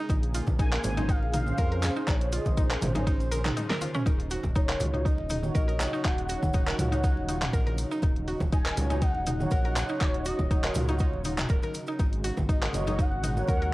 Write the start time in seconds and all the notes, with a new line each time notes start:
Already playing: G#4
0.09 A#1 C#3 A#3 D#4, kick, closed hi-hat, muted conga, high conga, maracas
0.23 closed hi-hat
0.34 F4, open hi-hat, maracas
0.47 A#1, kick, muted conga, high conga, low conga, maracas
0.59 D#4 G#5, kick, closed hi-hat, maracas
0.73 A#4, clap, closed hi-hat
0.84 G#1 C#4 G#4 C5 G#5, open hi-hat, muted conga, high conga, low conga, maracas
0.97 C#4 D#4 G#4 C5, closed hi-hat, low conga, maracas
1.09 D#4 F5, kick, closed hi-hat, maracas
1.22 A#1, muted conga
1.32 D#4 F5, mid tom, open hi-hat, high conga, maracas
1.46 C#4 G#4 C5, high conga, maracas
1.58 F2 A#4, kick, closed hi-hat, muted conga, maracas
1.72 A#4, closed hi-hat
1.82 clap, open hi-hat, low conga, maracas
1.96 D#4, maracas
2.07 A#1 D#4 C5 C#5, kick, clap, closed hi-hat, muted conga, high conga, maracas
2.21 closed hi-hat, maracas
2.32 F4 D#5, open hi-hat, maracas
2.46 A#1, kick, closed hi-hat, muted conga, high conga, low conga, maracas
2.57 D#4, kick, closed hi-hat, maracas
2.71 A#4, clap, closed hi-hat, maracas
2.81 G#1 C#4 G#4 C5, mid tom, open hi-hat, muted conga, high conga, low conga, maracas
2.95 C#4 D#4 G#4 C5, closed hi-hat, low conga, maracas
3.07 D#4, kick, closed hi-hat, maracas
3.20 A#1, closed hi-hat, muted conga, maracas
3.32 C#4 G#4 A#4 C5, open hi-hat, high conga, maracas
3.45 D#4, clap, closed hi-hat, mid tom, maracas
3.57 D#4, closed hi-hat, high tom, muted conga, maracas
3.70 A#4, snare, closed hi-hat, high conga
3.81 F4, open hi-hat, high conga, maracas
3.94 C#4, mid tom, maracas
4.06 D#1 F#3 D#4, kick, closed hi-hat, muted conga, high conga, maracas
4.20 closed hi-hat
4.31 F#4, open hi-hat, maracas
4.44 D#1, kick, muted conga, high conga, low conga, maracas
4.56 D#4 C#5, kick, closed hi-hat, maracas
4.69 A#4, clap, closed hi-hat
4.80 C#2 F4 F#4 C#5, open hi-hat, muted conga, high conga, low conga, maracas
4.94 D#4 F4 F#4 C#5, closed hi-hat, low conga, maracas
5.05 D#4 D#5, kick, closed hi-hat, maracas
5.18 D#1, muted conga
5.29 D#4, mid tom, open hi-hat, high conga, maracas
5.43 D#4 F#4 C#5, high conga, maracas
5.54 A#1 A#4 D#5, kick, closed hi-hat, muted conga, maracas
5.68 A#4, closed hi-hat
5.80 clap, open hi-hat, low conga, maracas
5.93 D#4, maracas
6.04 D#1 D#4 F#5, kick, clap, closed hi-hat, muted conga, high conga, maracas
6.18 closed hi-hat
6.29 F#4, open hi-hat, maracas
6.42 D#1, kick, muted conga, high conga, low conga, maracas
6.53 D#4 F#5, kick, closed hi-hat, maracas
6.67 A#4, clap, closed hi-hat
6.79 C#2 F4 F#4 C#5, mid tom, open hi-hat, muted conga, high conga, low conga, maracas
6.92 D#4 F#4 C#5, closed hi-hat, low conga, maracas
7.04 D#4, kick, closed hi-hat, maracas
7.17 D#1, muted conga
7.28 D#4 F4 F#4 C#5, open hi-hat, high conga, maracas
7.42 clap, mid tom, maracas
7.53 A#1 A#4, kick, closed hi-hat, muted conga, maracas
7.67 A#4, closed hi-hat, high conga
7.78 open hi-hat, maracas
7.91 D#4, maracas
8.02 D#1 D#4, kick, closed hi-hat, muted conga, high conga, maracas
8.16 closed hi-hat
8.28 F#4, open hi-hat, maracas
8.40 D#1, kick, muted conga, high conga, low conga, maracas
8.52 D#4 G#5, kick, closed hi-hat, maracas
8.66 A#4, clap, closed hi-hat
8.77 C#2 F4 F#4 C#5 G#5, open hi-hat, muted conga, high conga, low conga, maracas
8.90 D#4 F4 F#4 C#5, closed hi-hat, low conga, maracas
9.02 D#4 F#5, kick, closed hi-hat, maracas
9.15 D#1, muted conga
9.26 D#4 F#5, mid tom, open hi-hat, high conga, maracas
9.40 D#4 F#4 C#5, high conga, maracas
9.51 A#1 A#4, kick, closed hi-hat, muted conga, maracas
9.65 A#4, closed hi-hat
9.76 clap, open hi-hat, low conga, maracas
9.89 D#4, maracas
10.00 D#1 D#4 C#5, kick, clap, closed hi-hat, muted conga, high conga, maracas
10.14 closed hi-hat
10.25 F#4 D#5, open hi-hat, maracas
10.39 D#1, kick, muted conga, high conga, low conga, maracas
10.51 D#4, kick, closed hi-hat, maracas
10.64 A#4, clap, closed hi-hat
10.74 C#2 F4 F#4 C#5, mid tom, open hi-hat, muted conga, high conga, low conga, maracas
10.88 D#4 F4 F#4 C#5, closed hi-hat, low conga, maracas
10.99 D#4, kick, closed hi-hat, maracas
11.14 D#1, muted conga
11.24 D#4 F4 F#4 C#5, open hi-hat, high conga, maracas
11.38 clap, closed hi-hat, mid tom, maracas
11.49 D#1 A#4, kick, closed hi-hat, muted conga, maracas
11.63 A#4, closed hi-hat, high conga, maracas
11.74 open hi-hat, maracas
11.87 D#4, maracas
11.99 G#1 C#3 G#3 D#4 F#4, kick, closed hi-hat, muted conga, high conga, maracas
12.13 closed hi-hat
12.24 F#4, open hi-hat, maracas
12.37 G#1, kick, muted conga, high conga, low conga, maracas
12.49 D#4 D#5, kick, closed hi-hat, maracas
12.62 A#4, clap, closed hi-hat
12.73 F#1 F#4 A#4 C#5, open hi-hat, muted conga, high conga, low conga, maracas
12.87 D#4 F#4 A#4 C#5, closed hi-hat, low conga, maracas
12.99 D#4 F#5, kick, closed hi-hat, maracas
13.12 G#1, muted conga
13.23 D#4, mid tom, open hi-hat, high conga, maracas
13.37 F#4 A#4 C#5, high conga, maracas
13.48 D#2 A#4 F#5, kick, closed hi-hat, muted conga, maracas
13.62 A#4, closed hi-hat